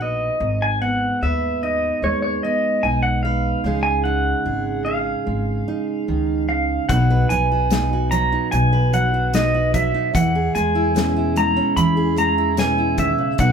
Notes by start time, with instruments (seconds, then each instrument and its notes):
Already playing: upright bass A#1, steel-string acoustic guitar B2 F#3 D#4 F#4
0.01 steel-string acoustic guitar B4, pedal steel guitar D#5
0.40 upright bass G#1, steel-string acoustic guitar G#2
0.62 pedal steel guitar G#5
0.82 steel-string acoustic guitar B3, pedal steel guitar F#5
1.22 upright bass D#2, steel-string acoustic guitar B4, pedal steel guitar E5
1.63 steel-string acoustic guitar D#4, pedal steel guitar D#5
2.02 upright bass D#2, steel-string acoustic guitar G#3, pedal steel guitar C#5
2.22 pedal steel guitar C#5
2.43 steel-string acoustic guitar B3, pedal steel guitar D#5
2.83 upright bass B1, steel-string acoustic guitar D#4, pedal steel guitar G#5
3.03 pedal steel guitar F#5
3.23 steel-string acoustic guitar B4, pedal steel guitar F5
3.64 upright bass C#2, steel-string acoustic guitar C#3 G#3 D#4 G#4
3.83 pedal steel guitar G#5
4.04 steel-string acoustic guitar D#4, pedal steel guitar F#5
4.46 upright bass G#1, steel-string acoustic guitar G#4
4.85 steel-string acoustic guitar G#4, pedal steel guitar F5
5.27 upright bass G#1, steel-string acoustic guitar G#3
5.68 steel-string acoustic guitar D#4
6.08 upright bass C#2, steel-string acoustic guitar D#3
6.49 steel-string acoustic guitar C#3, pedal steel guitar F5
6.89 upright bass B1, steel-string acoustic guitar B2 F#3 D#4 F#4 B4, pedal steel guitar F#5, kick, closed hi-hat
7.10 steel-string acoustic guitar B4
7.29 upright bass B1, steel-string acoustic guitar F#3, pedal steel guitar G#5, closed hi-hat
7.52 steel-string acoustic guitar F#4
7.71 steel-string acoustic guitar B2 D#4, snare, closed hi-hat
7.93 steel-string acoustic guitar F#4
8.11 steel-string acoustic guitar F#3, pedal steel guitar A#5, closed hi-hat
8.32 steel-string acoustic guitar D#4
8.51 upright bass B1, steel-string acoustic guitar B2, pedal steel guitar G#5, closed hi-hat
8.73 steel-string acoustic guitar B4
8.93 steel-string acoustic guitar F#3, pedal steel guitar F#5, closed hi-hat
9.14 steel-string acoustic guitar F#4
9.33 steel-string acoustic guitar B2 D#4, pedal steel guitar D#5, snare, closed hi-hat
9.55 steel-string acoustic guitar F#4
9.74 steel-string acoustic guitar F#3, pedal steel guitar E5, kick, closed hi-hat
9.94 steel-string acoustic guitar D#4
10.14 upright bass E2, steel-string acoustic guitar E3, pedal steel guitar F#5, kick, closed hi-hat
10.35 steel-string acoustic guitar G#4
10.55 upright bass E2, steel-string acoustic guitar G#3, pedal steel guitar G#5, closed hi-hat
10.75 steel-string acoustic guitar E4
10.95 steel-string acoustic guitar B2 C#4, snare, closed hi-hat
11.17 steel-string acoustic guitar E4
11.36 steel-string acoustic guitar G#3, pedal steel guitar A#5, closed hi-hat
11.57 steel-string acoustic guitar C#4
11.76 upright bass E2, steel-string acoustic guitar E3, pedal steel guitar B5, closed hi-hat
11.97 steel-string acoustic guitar G#4
12.16 steel-string acoustic guitar G#3, pedal steel guitar A#5, closed hi-hat
12.38 steel-string acoustic guitar E4
12.57 steel-string acoustic guitar B2 C#4, pedal steel guitar G#5, snare, closed hi-hat
12.78 steel-string acoustic guitar E4
12.97 steel-string acoustic guitar D#3, pedal steel guitar E5, kick, closed hi-hat
13.18 steel-string acoustic guitar C#3
13.38 upright bass B1, steel-string acoustic guitar B2 F#3 D#4 F#4 B4, pedal steel guitar F#5, kick, closed hi-hat